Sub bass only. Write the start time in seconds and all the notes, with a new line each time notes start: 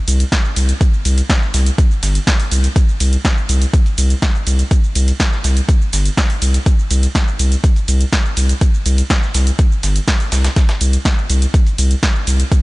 0.08 C2
0.56 C2
1.05 C2
1.54 C2
2.03 G1
2.52 C2
3.00 C2
3.49 C2
3.98 C2
4.47 C2
4.95 C2
5.44 C2
5.93 G1
6.42 C2
6.91 C2
7.39 C2
7.88 C2
8.37 C2
8.86 C2
9.34 C2
9.83 G1
10.32 C2
10.81 C2
11.30 C2
11.78 C2
12.27 C2